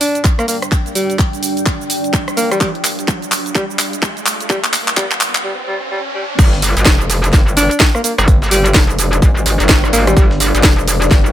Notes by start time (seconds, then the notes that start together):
Already playing: G3 D4 D5 G5, riser
0.01 D4, open hi-hat, shaker
0.15 closed hi-hat, shaker
0.24 kick, clap, closed hi-hat, shaker
0.39 A#3, cross-stick, closed hi-hat, shaker
0.48 A#3, open hi-hat, shaker
0.62 cross-stick, closed hi-hat, shaker
0.72 kick, clap, closed hi-hat, shaker
0.86 closed hi-hat, shaker
0.95 G3, open hi-hat, shaker
1.10 closed hi-hat, shaker
1.19 kick, clap, closed hi-hat, shaker
1.33 closed hi-hat, shaker
1.43 open hi-hat, shaker
1.57 closed hi-hat, shaker
1.66 kick, clap, closed hi-hat, shaker
1.81 shaker
1.90 open hi-hat, shaker
2.04 closed hi-hat, shaker
2.13 kick, clap, closed hi-hat, shaker
2.28 cross-stick, closed hi-hat, shaker
2.37 A#3, open hi-hat, shaker
2.51 G3, cross-stick, closed hi-hat, shaker
2.61 G3 F5, kick, clap, closed hi-hat, shaker
2.75 closed hi-hat
2.84 clap, open hi-hat, shaker
2.99 closed hi-hat, shaker
3.08 kick, clap, closed hi-hat, shaker
3.22 closed hi-hat, shaker
3.32 clap, open hi-hat, shaker
3.46 closed hi-hat, shaker
3.55 G3, kick, clap, closed hi-hat, shaker
3.70 shaker
3.79 clap, open hi-hat, shaker
3.93 closed hi-hat, shaker
4.02 kick, clap, closed hi-hat, shaker
4.17 closed hi-hat, shaker
4.26 clap, open hi-hat, shaker
4.40 closed hi-hat, shaker
4.50 G3, kick, clap, closed hi-hat, shaker
4.64 clap, closed hi-hat, shaker
4.73 clap, open hi-hat, shaker
4.88 clap, closed hi-hat, shaker
4.97 G3, kick, clap, closed hi-hat, shaker
5.11 clap, closed hi-hat, shaker
5.21 clap, open hi-hat, shaker
5.35 clap, closed hi-hat, shaker
5.44 G3
5.68 G3
5.91 G3
6.15 G3
6.39 G1 D4 G4 D5, kick, closed hi-hat, crash, shaker
6.53 snare
6.62 closed hi-hat, open hi-hat, shaker
6.77 G#1, snare, closed hi-hat, shaker
6.85 F1, kick, snare, closed hi-hat, shaker
7.01 shaker
7.10 snare, closed hi-hat, open hi-hat, shaker
7.24 snare, closed hi-hat, shaker
7.33 G1, kick, snare, closed hi-hat, shaker
7.48 shaker
7.57 D4, closed hi-hat, open hi-hat, shaker
7.71 closed hi-hat, shaker
7.80 kick, snare, closed hi-hat, shaker
7.95 A#3, cross-stick, shaker
8.04 A#3, closed hi-hat, open hi-hat, shaker
8.18 G1, cross-stick, closed hi-hat, shaker
8.28 kick, closed hi-hat, shaker
8.42 snare, shaker
8.51 G1 G3, closed hi-hat, open hi-hat, shaker
8.66 closed hi-hat, shaker
8.74 F1, kick, snare, closed hi-hat, shaker
8.90 shaker
8.99 closed hi-hat, open hi-hat, shaker
9.13 closed hi-hat, shaker
9.22 G#1, kick, closed hi-hat, shaker
9.37 shaker
9.46 snare, closed hi-hat, open hi-hat, shaker
9.60 G1, snare, closed hi-hat, shaker
9.69 kick, snare, closed hi-hat, shaker
9.84 cross-stick, shaker
9.93 G#1 A#3, closed hi-hat, open hi-hat, shaker
10.07 G3, cross-stick, closed hi-hat, shaker
10.17 G1 G3, kick, closed hi-hat, shaker
10.31 snare
10.40 closed hi-hat, open hi-hat, shaker
10.54 G#1, snare, closed hi-hat, shaker
10.63 F1, kick, snare, closed hi-hat, shaker
10.79 shaker
10.88 snare, closed hi-hat, open hi-hat, shaker
11.02 snare, closed hi-hat, shaker
11.11 G1, kick, snare, closed hi-hat, shaker
11.26 shaker